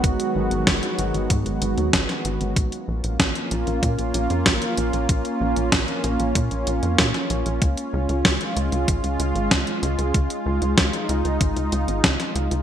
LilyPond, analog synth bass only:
\new Staff \with { instrumentName = "Analog synth bass" } { \clef bass \time 4/4 \key ais \phrygian \tempo 4 = 95 gis,,16 r16 gis,,16 gis,,16 gis,,16 r16 gis,,16 gis,,16 gis,16 gis,,16 gis,,16 dis,16 gis,,16 r16 gis,,16 gis,,16 | ais,,16 r16 ais,,16 ais,,16 ais,,16 r16 ais,,16 ais,,16 ais,16 ais,,16 ais,,16 eis,16 ais,,16 r16 ais,,16 ais,,16 | ais,,16 r16 ais,,16 ais,,16 ais,,16 r16 ais,,16 ais,,16 ais,16 ais,,16 ais,,16 eis,16 ais,16 r16 ais,,16 ais,,16 | cis,16 r16 cis,16 cis,16 cis,16 r16 cis,16 cis,16 gis,,16 cis,16 cis,16 gis,,16 cis,16 r16 cis,16 cis,16 |
cis,16 r16 cis,16 cis,16 cis,16 r16 cis,16 cis,16 gis,,16 cis,16 cis,16 gis,,16 cis,16 r16 cis,16 cis,16 | }